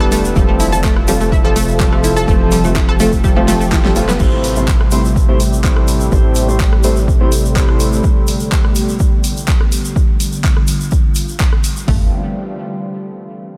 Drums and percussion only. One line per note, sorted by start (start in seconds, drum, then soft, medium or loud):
0.01 cross-stick medium
0.12 open hi-hat medium
0.12 shaker medium
0.25 shaker medium
0.36 kick loud
0.36 shaker soft
0.60 open hi-hat medium
0.60 shaker medium
0.73 shaker medium
0.84 kick loud
0.84 clap loud
0.84 shaker soft
0.96 cross-stick medium
1.08 open hi-hat medium
1.08 shaker loud
1.20 shaker medium
1.32 kick loud
1.32 shaker soft
1.56 open hi-hat loud
1.56 shaker medium
1.68 shaker soft
1.80 kick loud
1.80 clap loud
1.80 shaker soft
1.93 cross-stick medium
2.04 open hi-hat medium
2.04 shaker medium
2.16 shaker soft
2.28 kick loud
2.28 shaker soft
2.51 open hi-hat loud
2.51 shaker medium
2.64 shaker medium
2.75 kick loud
2.75 clap loud
2.75 shaker soft
2.89 cross-stick medium
3.00 open hi-hat medium
3.00 shaker loud
3.12 kick medium
3.12 shaker medium
3.24 kick loud
3.24 shaker soft
3.48 snare medium
3.48 open hi-hat loud
3.48 shaker medium
3.61 shaker medium
3.71 kick loud
3.71 snare medium
3.71 clap loud
3.71 shaker soft
3.85 snare medium
3.96 open hi-hat medium
3.96 shaker medium
4.09 snare medium
4.09 shaker medium
4.20 kick loud
4.20 crash medium
4.20 shaker soft
4.44 open hi-hat loud
4.44 shaker medium
4.56 shaker medium
4.68 kick loud
4.68 clap loud
4.68 shaker soft
4.81 cross-stick medium
4.91 open hi-hat medium
4.91 shaker loud
5.05 shaker medium
5.16 kick loud
5.16 shaker soft
5.40 open hi-hat loud
5.40 shaker medium
5.53 shaker medium
5.64 kick loud
5.64 clap loud
5.64 shaker soft
5.77 cross-stick medium
5.88 open hi-hat medium
5.88 shaker medium
6.00 shaker soft
6.12 kick loud
6.12 shaker soft
6.35 open hi-hat loud
6.35 shaker loud
6.49 shaker medium
6.60 kick loud
6.60 clap loud
6.60 shaker soft
6.73 cross-stick medium
6.83 open hi-hat medium
6.83 shaker medium
6.96 shaker medium
7.08 kick loud
7.08 shaker soft
7.32 open hi-hat loud
7.32 shaker loud
7.45 shaker medium
7.56 kick loud
7.56 clap loud
7.56 shaker soft
7.69 cross-stick medium
7.80 open hi-hat medium
7.80 shaker medium
7.93 shaker medium
8.03 kick loud
8.03 shaker soft
8.27 open hi-hat loud
8.27 shaker medium
8.40 shaker medium
8.52 kick loud
8.52 clap loud
8.52 shaker soft
8.65 cross-stick medium
8.75 open hi-hat medium
8.75 shaker loud
8.88 shaker medium
8.99 kick loud
8.99 shaker soft
9.24 open hi-hat loud
9.24 shaker medium
9.37 shaker medium
9.48 kick loud
9.48 clap loud
9.48 shaker soft
9.61 cross-stick medium
9.72 open hi-hat medium
9.72 shaker medium
9.85 shaker medium
9.96 kick loud
9.96 shaker soft
10.20 open hi-hat loud
10.20 shaker medium
10.32 shaker medium
10.44 kick loud
10.44 clap loud
10.44 shaker soft
10.57 cross-stick medium
10.67 open hi-hat medium
10.67 shaker loud
10.81 shaker medium
10.91 kick loud
10.91 shaker soft
11.15 open hi-hat loud
11.15 shaker medium
11.28 shaker soft
11.40 kick loud
11.40 clap loud
11.40 shaker soft
11.53 cross-stick medium
11.64 open hi-hat medium
11.64 shaker medium
11.76 shaker medium
11.88 kick loud
11.88 floor tom loud
11.88 open hi-hat medium